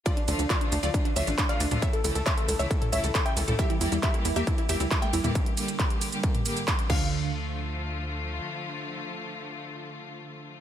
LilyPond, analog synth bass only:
\new Staff \with { instrumentName = "Analog synth bass" } { \clef bass \time 4/4 \key d \minor \tempo 4 = 136 r8 d,16 d,16 r8 d,16 d,16 r8 d,16 a,,16 r8 d,16 d,16 | r8 cis,16 cis,16 r8 cis,16 cis,16 r8 cis,16 cis,16 r8 cis,16 cis,16 | r8 e,16 e,16 r8 e,16 e,16 r8 e,16 d,16 r8 e,16 e,16 | r2. r8 d,8~ |
d,2. r4 | r1 | }